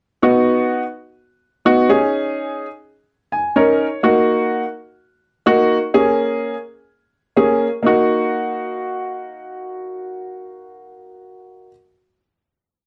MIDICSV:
0, 0, Header, 1, 2, 480
1, 0, Start_track
1, 0, Key_signature, -6, "minor"
1, 0, Tempo, 476190
1, 227, Time_signature, 4, 2, 24, 8
1, 12970, End_track
2, 0, Start_track
2, 0, Title_t, "Grand piano"
2, 0, Program_c, 0, 0
2, 227, Note_on_c, 0, 59, 82
2, 229, Note_on_c, 0, 63, 76
2, 232, Note_on_c, 0, 66, 88
2, 824, Note_off_c, 0, 59, 0
2, 826, Note_off_c, 0, 63, 0
2, 827, Note_off_c, 0, 66, 0
2, 1667, Note_on_c, 0, 59, 78
2, 1671, Note_on_c, 0, 63, 74
2, 1671, Note_on_c, 0, 66, 93
2, 1894, Note_off_c, 0, 63, 0
2, 1907, Note_off_c, 0, 59, 0
2, 1908, Note_on_c, 0, 61, 87
2, 1909, Note_off_c, 0, 66, 0
2, 1910, Note_on_c, 0, 63, 78
2, 1912, Note_on_c, 0, 68, 94
2, 2675, Note_off_c, 0, 61, 0
2, 2676, Note_off_c, 0, 63, 0
2, 2678, Note_off_c, 0, 68, 0
2, 3349, Note_on_c, 0, 80, 67
2, 3571, Note_off_c, 0, 80, 0
2, 3586, Note_on_c, 0, 61, 84
2, 3588, Note_on_c, 0, 63, 76
2, 3588, Note_on_c, 0, 73, 71
2, 3592, Note_on_c, 0, 70, 91
2, 3885, Note_off_c, 0, 61, 0
2, 3886, Note_off_c, 0, 63, 0
2, 3888, Note_off_c, 0, 70, 0
2, 4034, Note_off_c, 0, 73, 0
2, 4064, Note_on_c, 0, 58, 83
2, 4068, Note_on_c, 0, 63, 75
2, 4069, Note_on_c, 0, 66, 88
2, 4663, Note_off_c, 0, 58, 0
2, 4665, Note_off_c, 0, 63, 0
2, 4666, Note_off_c, 0, 66, 0
2, 5505, Note_on_c, 0, 58, 84
2, 5507, Note_on_c, 0, 63, 74
2, 5510, Note_on_c, 0, 66, 93
2, 5805, Note_off_c, 0, 58, 0
2, 5806, Note_off_c, 0, 63, 0
2, 5807, Note_off_c, 0, 66, 0
2, 5987, Note_on_c, 0, 58, 85
2, 5989, Note_on_c, 0, 61, 76
2, 5991, Note_on_c, 0, 68, 95
2, 6584, Note_off_c, 0, 58, 0
2, 6585, Note_off_c, 0, 61, 0
2, 6586, Note_off_c, 0, 68, 0
2, 7424, Note_on_c, 0, 58, 82
2, 7426, Note_on_c, 0, 61, 74
2, 7429, Note_on_c, 0, 68, 87
2, 7724, Note_off_c, 0, 58, 0
2, 7725, Note_off_c, 0, 61, 0
2, 7727, Note_off_c, 0, 68, 0
2, 7888, Note_on_c, 0, 58, 81
2, 7907, Note_on_c, 0, 63, 78
2, 7927, Note_on_c, 0, 66, 87
2, 11754, Note_off_c, 0, 58, 0
2, 11773, Note_off_c, 0, 63, 0
2, 11793, Note_off_c, 0, 66, 0
2, 12970, End_track
0, 0, End_of_file